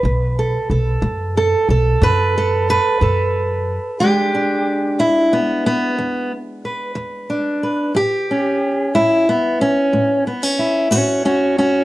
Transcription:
Already playing: B4
0.03 B1 B2
0.39 A4
0.70 B1 A4
1.02 F#2 B2
1.37 A4
1.69 B1 A4
2.02 F#2 B2 B4
2.38 A4
2.70 B4
3.01 F#2 B2 A4
4.00 E2 G#3 D4 G4
4.35 D4
4.99 E2 E4
5.33 B3
5.66 B3
5.99 E2
6.65 B4
6.95 E2
7.30 D4
7.63 B4
7.95 A2 G4
8.31 C#4
8.95 A2 E4
9.29 B3
9.61 C#4
9.93 A2
10.27 B3
10.43 C#4
10.59 E4
10.91 A2 C#4 F#4
11.25 C#4 F#4
11.58 C#4 F#4

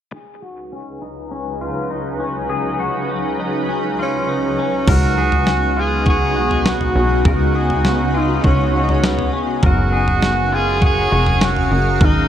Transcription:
0.12 C#2 C#3 F#3 D#4 G#4 B4
0.42 F#4
0.72 C#4
1.02 D#4
1.31 C#4
1.61 F4
1.90 D#4
2.20 C#4
2.50 G#4
2.80 F#4
3.09 C#4
3.40 D#4
3.69 C#4
3.99 C#4 F4
4.29 D#4
4.59 C#4
4.87 C#2 C#3 G#3 B3 D#4 F#4 A#4, kick, floor tom, crash
5.18 G#4
5.32 floor tom
5.47 C#4, snare
5.77 F4 G#4
6.06 F#4 G#4, kick, floor tom
6.36 B1 F#4
6.51 floor tom
6.65 B3 F#4, snare
6.81 floor tom
6.95 B1 C#4
7.25 C#2 F#4 A#4, kick, floor tom
7.55 G#4
7.70 floor tom
7.85 C#4, snare
8.14 D#4 F4
8.44 C#2 C#4 F#4, kick, floor tom
8.74 C#4 F#4
8.83 D#4
8.89 C#4, floor tom
9.03 B3, snare
9.19 floor tom
9.33 C#4
9.63 F#1 F#3 C#4 F#4 G#4 A#4 F5, kick, floor tom
9.93 G#4
10.08 floor tom
10.22 C#4, snare
10.52 F4 G#4
10.82 F#4 G#4, kick, floor tom
11.12 F1 F#4
11.26 floor tom
11.41 C#4 F#4, snare
11.56 floor tom
11.71 F#1 D#4
12.01 G#1 G#3 D#4 F#4 A#4 B4, kick, floor tom

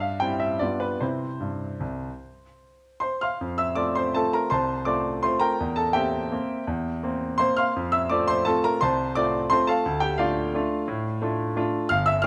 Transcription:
Already playing: G2
0.00 F5
0.20 G3 C4 E4 G5
0.40 E5
0.59 G2 G3 B3 F4 D5
0.80 B4
1.00 C3 C4 E4 C5
1.40 G2
1.80 C2
3.00 C5 C6
3.21 F5 C6 F6
3.41 F2
3.58 E5 E6
3.75 A3 C4 F4 D5 D6
3.95 C5 C6
4.14 A3 C4 F4 A4 A5
4.33 A#4 A#5
4.50 C2 C5 A5 C6
4.85 A3 C4 F4 D5 D6
5.23 A3 C4 F4 C5 C6
5.40 A#4 G5 A#5
5.60 E2
5.76 A4 A5
5.93 A#3 C4 G4 E5 G5
6.32 A#3 C4
6.67 E2
7.03 A#3 C4
7.38 A#3 C4 C5 C6
7.57 F5 C6 F6
7.76 F2
7.92 E5 E6
8.10 A3 C4 F4 D5 D6
8.28 C5 C6
8.45 A3 C4 F4 A4 A5
8.64 A#4 A#5
8.81 C2 C5 A5 C6
9.15 A3 C4 F4 D5 D6
9.50 A3 C4 F4 C5 C6
9.67 A4 F5 A5
9.86 D2
10.00 G4 G5
10.18 A3 D4 F4 D5 F5
10.55 A3 D4 F4
10.88 A2
11.22 A3 D4 F4
11.56 A3 D4 F4
11.89 G1 F5 F6
12.06 E5 E6
12.22 A#3 D4 F6

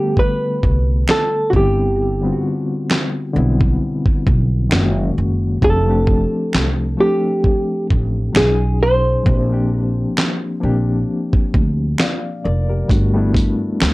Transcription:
Already playing: D3 G3 A3 B3 F#4 G4 A4
0.17 B4, kick
0.63 C2, kick
1.08 A4, finger snap, snare, clap
1.50 G1 D3 G3 B3 F#4, kick
1.54 C4 E4 G4
2.22 D3 G3 B3 C4
2.26 F4
2.32 F#4
2.90 finger snap, snare, clap
3.33 B1 D3 G3 B3 C4
3.38 E4
3.61 kick
4.06 kick
4.27 B1, kick
4.69 F#1 D#3 G#3 A#3 C#4, finger snap, snare, clap
4.74 F#4
5.18 F#1
5.61 F1 F3 A3 C4 D4 A4, kick
5.66 G4
5.86 F3 A3 C4 D4
5.91 G4
6.07 kick
6.53 C2, finger snap, snare, clap
6.97 F3 A3 C4 D4 G4
7.02 A4
7.44 kick
7.90 A1, kick
8.32 B1 B2 F#3 C#4 D#4, finger snap, snare, clap
8.37 G#4
8.83 C5
9.24 A#1 F3 A#3 C4 D4, kick
9.28 G4
9.49 F3 A#3 C4 D4
9.53 G4
10.17 finger snap, snare, clap
10.60 A#1 F3 A#3 C4 D4
10.65 G4
11.33 kick
11.54 D2, kick
11.98 D5 F5, finger snap, snare, clap
12.44 F1 A#4 D5
12.69 G4 A#4
12.88 G1 G3 A3 B3 D4, kick, closed hi-hat
12.93 F#4
13.14 G3 A3 B3 D4
13.18 E4
13.35 kick, closed hi-hat
13.80 D2, finger snap, snare, clap, closed hi-hat

